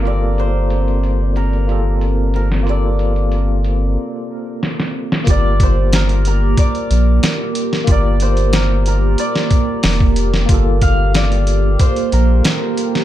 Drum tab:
HH |x-x-xxx-xxx-x-x-|x-xxx-x---------|x-x-xxx-xxx-x-x-|x-xxx-x-x-x-o-x-|
SD |---------------o|------------oo-o|----o-------o--o|----o----o--o--o|
BD |----------------|----------------|o-o-----o-------|o---------o--o--|

HH |x-x-xxx-xxx-x-x-|
SD |----o-------o--o|
BD |o-o-----o-------|